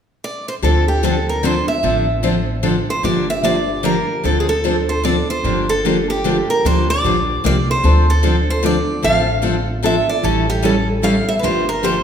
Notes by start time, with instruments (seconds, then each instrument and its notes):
0.24 steel-string acoustic guitar D5
0.48 steel-string acoustic guitar C5
0.62 upright bass D2, steel-string acoustic guitar D3 F3 C4 D4 A4
0.88 steel-string acoustic guitar G4
1.03 steel-string acoustic guitar D3 F3 C4 D4 A4
1.29 steel-string acoustic guitar A#4
1.43 steel-string acoustic guitar D3 F3 C4 D4 A4 C5
1.68 steel-string acoustic guitar E5
1.83 upright bass A1, steel-string acoustic guitar D3 F3 C4 D4 A4
2.23 steel-string acoustic guitar D3 F3 C4 D4 A4
2.63 steel-string acoustic guitar D3 F3 C4 D4 A4
2.90 steel-string acoustic guitar C5
3.03 upright bass G1, steel-string acoustic guitar D3 F3 A#3 D4 G4 D5
3.30 steel-string acoustic guitar E5
3.44 steel-string acoustic guitar D3 F3 A#3 D4 G4 D5
3.83 steel-string acoustic guitar D3 F3 A#3 D4 G4 A#4
4.24 upright bass D2, steel-string acoustic guitar D3 F3 C4 D4 A4
4.40 steel-string acoustic guitar G#4
4.49 steel-string acoustic guitar A4
4.64 steel-string acoustic guitar D3 F3 C4 D4 A4
4.89 steel-string acoustic guitar C5
5.04 steel-string acoustic guitar D3 F3 C4 D4 A4 D5
5.30 steel-string acoustic guitar C5
5.44 upright bass G1, steel-string acoustic guitar D3 F3 A#3 D4 G4
5.69 steel-string acoustic guitar A4
5.85 steel-string acoustic guitar D3 F3 A#3 D4 G4
6.10 steel-string acoustic guitar G4
6.24 steel-string acoustic guitar D3 F3 A#3 D4 G4
6.50 steel-string acoustic guitar A#4
6.64 upright bass D2, steel-string acoustic guitar D3 F3 A#3 D4 G4 C5
6.90 steel-string acoustic guitar D5
7.04 upright bass A#1, steel-string acoustic guitar D3 F3 A#3 D4 G4
7.44 upright bass C2, steel-string acoustic guitar D3 F3 A#3 D4 G4 D5
7.71 steel-string acoustic guitar C5
7.83 upright bass D2, steel-string acoustic guitar D3 F3 C4 D4 A4
8.10 steel-string acoustic guitar A4
8.23 steel-string acoustic guitar D3 F3 C4 D4 A4
8.50 steel-string acoustic guitar C5
8.63 steel-string acoustic guitar D3 F3 C4 D4 A4 D5
9.03 upright bass A1, steel-string acoustic guitar D3 F3 C4 D4 A4 F5
9.42 steel-string acoustic guitar D3 F3 C4 D4 A4
9.83 steel-string acoustic guitar D3 F3 C4 D4 A4 E5
10.09 steel-string acoustic guitar D5
10.23 upright bass A1, steel-string acoustic guitar E3 G3 C#4 E4 A4
10.50 steel-string acoustic guitar G4
10.62 steel-string acoustic guitar E3 G3 C#4 E4 A4
11.03 steel-string acoustic guitar E3 G3 C#4 E4 A4 F5
11.29 steel-string acoustic guitar E5
11.39 upright bass G1, steel-string acoustic guitar D3 F3 B4
11.43 steel-string acoustic guitar A#3 D4 G4 C5
11.69 steel-string acoustic guitar A#4
11.83 steel-string acoustic guitar D3 F3 A#3 D4 G4 C5